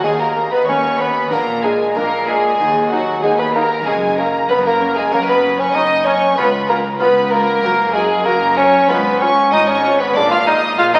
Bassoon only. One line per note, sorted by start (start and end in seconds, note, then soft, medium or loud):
0.04 0.11 G#3 medium
0.20 0.51 A#3 medium
0.52 0.67 B3 medium
0.69 1.02 C#4 medium
1.00 1.34 B3 medium
1.32 1.66 A#3 medium
1.65 1.99 G#3 medium
1.97 2.28 A#3 medium
2.29 2.90 G#3 medium
2.92 3.23 F#3 medium
3.23 3.41 G#3 medium
3.40 3.55 B3 medium
3.56 3.70 A#3 medium
3.87 4.21 G#3 medium
4.19 4.52 A#3 medium
4.50 4.65 B3 medium
4.67 4.99 A#3 medium
4.97 5.13 G#3 medium
5.14 5.20 A#3 medium
5.29 5.61 B3 medium
5.60 5.77 C#4 medium
5.75 6.08 D#4 medium
6.06 6.37 C#4 medium
6.38 6.52 B3 medium
6.69 6.83 A#3 medium
7.01 7.33 B3 medium
7.31 7.95 A#3 loud
7.94 8.24 G#3 medium
8.25 8.56 A#3 loud
8.57 8.88 C#4 loud
8.89 9.23 B3 medium
9.21 9.54 C#4 loud
9.52 9.70 D#4 loud
9.68 10.02 C#4 loud
10.00 10.16 B3 medium
10.16 10.31 D4 loud
10.31 10.38 F4 medium
10.47 10.61 D#4 medium
10.78 10.93 F4 loud
10.94 11.00 D#4 loud